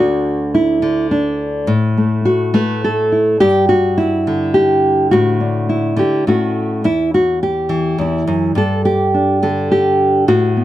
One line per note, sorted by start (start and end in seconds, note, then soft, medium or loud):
0.00 1.69 D2 medium
0.00 0.81 D3 medium
0.00 0.54 F#4 medium
0.55 1.11 E4 medium
0.82 1.68 D3 medium
1.11 1.68 D4 medium
1.67 3.40 A2 medium
1.97 2.53 A3 soft
2.25 3.11 F#4 medium
2.54 3.36 A3 medium
2.54 2.83 B4 medium
2.84 3.40 A4 medium
3.12 3.37 E4 soft
3.40 5.08 G2 medium
3.40 3.68 G4 loud
3.69 4.54 F#4 loud
3.98 5.11 E4 medium
4.27 5.95 D3 medium
4.54 5.11 G4 medium
5.11 5.98 A2 medium
5.11 5.97 F#4 medium
5.40 6.23 D4 soft
5.69 6.27 E4 medium
5.96 6.26 D3 medium
5.96 6.27 G4 medium
6.27 6.85 A2 medium
6.27 6.82 A3 soft
6.27 6.82 C#4 soft
6.27 6.82 E4 soft
6.27 6.85 F#4 medium
6.84 7.97 E2 medium
6.84 7.14 E4 medium
7.14 7.42 F#4 medium
7.43 8.00 G4 medium
7.69 8.53 E3 medium
7.98 8.27 E2 medium
7.98 8.57 E4 medium
8.27 8.55 F#2 medium
8.55 10.24 G2 medium
8.55 8.85 A4 medium
8.85 9.43 G4 medium
9.14 10.25 D4 soft
9.43 10.28 D3 medium
9.43 9.71 A4 medium
9.72 10.28 G4 medium
10.28 10.64 A2 medium
10.28 10.64 F#4 medium
10.57 10.64 B3 soft